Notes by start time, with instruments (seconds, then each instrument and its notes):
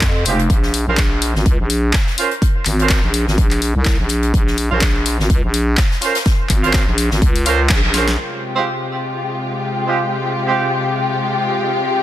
0.01 fm bass F2, kick, snare, clap, closed hi-hat
0.25 fm bass F1, horn section G#3 C4 F4 G4, closed hi-hat, open hi-hat
0.39 closed hi-hat
0.50 fm bass A#1, kick, closed hi-hat
0.63 snare
0.74 closed hi-hat, open hi-hat
0.87 fm bass A#1, horn section C#4 F4 A#4 C5
0.97 kick, snare, clap, closed hi-hat
1.22 closed hi-hat, open hi-hat
1.35 fm bass G#1, snare
1.46 fm bass C#2, kick, closed hi-hat
1.59 fm bass A#1
1.70 closed hi-hat, open hi-hat
1.93 kick, snare, clap, closed hi-hat
2.07 snare
2.18 horn section C#4 F4 A#4 C5, closed hi-hat, open hi-hat
2.31 closed hi-hat
2.42 kick, closed hi-hat
2.65 fm bass G#1, clap, closed hi-hat, open hi-hat
2.79 horn section C#4 F4 A#4 C5, closed hi-hat
2.89 kick, snare, clap, closed hi-hat
3.03 fm bass A#1
3.14 closed hi-hat, open hi-hat
3.27 fm bass G#1, snare
3.38 fm bass A#1, kick, closed hi-hat
3.51 clap, open hi-hat
3.62 closed hi-hat, open hi-hat
3.75 fm bass C2
3.85 kick, snare, clap, closed hi-hat
3.99 fm bass A#1
4.09 closed hi-hat, open hi-hat
4.23 closed hi-hat
4.34 fm bass A#1, kick, closed hi-hat
4.47 snare
4.58 closed hi-hat, open hi-hat
4.71 fm bass A#1, horn section C#4 F4 A#4 C5
4.81 kick, snare, clap, closed hi-hat
5.06 closed hi-hat, open hi-hat
5.19 fm bass G#1, snare
5.30 fm bass C#2, kick, closed hi-hat
5.43 fm bass A#1
5.54 closed hi-hat, open hi-hat
5.77 kick, snare, clap, closed hi-hat
5.91 snare
6.01 horn section C#4 F4 A#4 C5, snare, closed hi-hat, open hi-hat
6.15 snare, closed hi-hat
6.26 kick, snare, closed hi-hat
6.49 fm bass G#1, kick, clap, closed hi-hat, open hi-hat
6.63 horn section C#4 F4 A#4 C5, closed hi-hat
6.73 kick, snare, clap, closed hi-hat
6.87 fm bass A#1
6.98 closed hi-hat, open hi-hat
7.11 fm bass G#1, snare
7.22 fm bass C#2, kick, closed hi-hat
7.36 open hi-hat
7.46 horn section C#4 F4 A#4 C5, closed hi-hat, open hi-hat
7.69 fm bass A#1, kick, snare, clap, closed hi-hat
7.83 fm bass A#1
7.94 horn section C#4 F4 A#4 C5, snare, closed hi-hat, open hi-hat
8.07 snare
8.18 string section C3 G#3 F4 G4
8.56 horn section G#3 C4 F4 G4
9.86 horn section G#3 C4 F4 G4
10.47 horn section G#3 C4 F4 G4